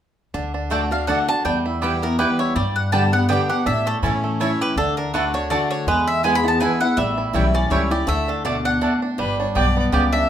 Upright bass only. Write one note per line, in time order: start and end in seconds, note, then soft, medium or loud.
0.34 1.12 D2 medium
1.45 2.23 E2 medium
2.56 3.34 G2 medium
3.66 3.92 A2 medium
4.03 4.55 A2 medium
4.76 5.54 D2 medium
5.87 6.65 E2 medium
6.97 7.23 A1 medium
7.34 7.66 B1 medium
7.70 8.02 C#2 medium
8.07 8.86 D2 medium
9.18 9.45 G1 medium
9.55 9.87 B1 medium
9.92 10.23 C#2 medium